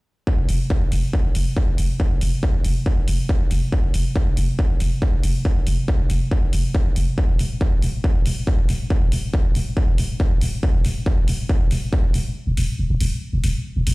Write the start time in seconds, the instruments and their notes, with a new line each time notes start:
0.27 kick
0.38 808-style bass F1
0.49 808-style bass F1, open hi-hat
0.70 808-style bass F1, kick
0.81 808-style bass F1
0.92 808-style bass F1, open hi-hat
1.13 kick
1.24 808-style bass F1
1.35 808-style bass F1, open hi-hat
1.57 kick
1.68 808-style bass F1
1.78 808-style bass F1, open hi-hat
2.00 kick
2.11 808-style bass F1
2.21 808-style bass F1, open hi-hat
2.43 808-style bass F1, kick
2.54 808-style bass F1
2.64 808-style bass F1, open hi-hat
2.86 kick
2.97 808-style bass F1
3.08 808-style bass F1, open hi-hat
3.29 kick
3.40 808-style bass F1
3.51 808-style bass F1, open hi-hat
3.72 kick
3.83 808-style bass F1
3.94 808-style bass F1, open hi-hat
4.16 808-style bass F1, kick
4.26 808-style bass F1
4.37 808-style bass F1, open hi-hat
4.59 kick
4.70 808-style bass F1
4.80 808-style bass F1, open hi-hat
5.02 kick
5.13 808-style bass F1
5.23 808-style bass F1, open hi-hat
5.45 kick
5.56 808-style bass F1
5.67 808-style bass F1, open hi-hat
5.88 808-style bass F1, kick
5.99 808-style bass F1
6.10 808-style bass F1, open hi-hat
6.31 kick
6.42 808-style bass F1
6.53 808-style bass F1, open hi-hat
6.75 kick
6.86 808-style bass F1
6.96 808-style bass F1, open hi-hat
7.18 kick
7.29 808-style bass D#1
7.39 808-style bass D#1, open hi-hat
7.61 808-style bass D#1, kick
7.72 808-style bass D#1
7.82 808-style bass D#1, open hi-hat
8.04 kick
8.15 808-style bass D#1
8.25 808-style bass D#1, open hi-hat
8.47 kick
8.58 808-style bass D#1
8.69 808-style bass D#1, open hi-hat
8.90 kick
9.01 808-style bass D#1
9.12 808-style bass D#1, open hi-hat
9.34 808-style bass D#1, kick
9.45 808-style bass D#1
9.55 808-style bass D#1, open hi-hat
9.77 kick
9.88 808-style bass D#1
9.98 808-style bass D#1, open hi-hat
10.20 kick
10.31 808-style bass D#1
10.41 808-style bass D#1, open hi-hat
10.63 kick
10.74 808-style bass D#1
10.85 808-style bass D#1, open hi-hat
11.06 808-style bass D#1, kick
11.17 808-style bass D#1
11.28 808-style bass D#1, open hi-hat
11.49 kick
11.60 808-style bass D#1
11.71 808-style bass D#1, open hi-hat
11.93 kick
12.04 808-style bass D#1
12.14 808-style bass D#1, open hi-hat
12.47 808-style bass D#1
12.57 808-style bass D#1, open hi-hat
12.79 808-style bass D#1
12.90 808-style bass D#1
13.00 808-style bass D#1, open hi-hat
13.33 808-style bass D#1
13.43 808-style bass D#1, open hi-hat
13.76 808-style bass D#1
13.87 808-style bass D#1, open hi-hat